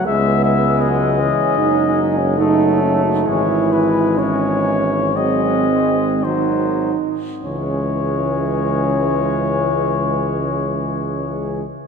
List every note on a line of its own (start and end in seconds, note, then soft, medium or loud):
0.05 1.28 C#2 medium
0.05 2.38 G#3 medium
0.05 0.53 G#3 medium
0.05 1.19 B3 medium
0.05 0.43 E5 medium
0.45 0.83 E5 medium
0.81 1.21 F#3 medium
0.81 2.95 D#5 medium
1.19 1.60 E3 medium
1.19 1.57 C#4 medium
1.57 3.22 F#1 medium
1.57 2.38 F#3 medium
1.57 2.17 D#4 medium
2.18 2.38 C#4 medium
2.37 3.29 F#3 medium
2.37 3.27 A3 medium
2.37 2.80 D#4 medium
2.82 3.04 C#4 medium
3.04 3.26 D#4 medium
3.26 6.93 G#1 medium
3.26 4.18 E3 soft
3.26 4.98 G#3 medium
3.26 4.18 E4 medium
3.26 3.74 C#5 medium
3.72 4.20 B4 medium
4.17 5.17 E3 soft
4.17 5.15 C#4 medium
4.17 5.18 C#5 soft
5.14 5.67 F#3 medium
5.14 6.22 G#3 soft
5.14 6.24 C4 medium
5.14 6.25 D#5 medium
5.68 6.26 G#3 soft
6.23 6.97 D#3 soft
6.23 6.97 F#3 soft
6.23 7.25 D#4 medium
6.23 6.97 C5 soft
7.42 11.64 C#2 soft
7.42 11.63 E3 soft
7.42 11.63 G#3 soft
7.42 11.61 C#4 medium
7.42 11.63 C#5 medium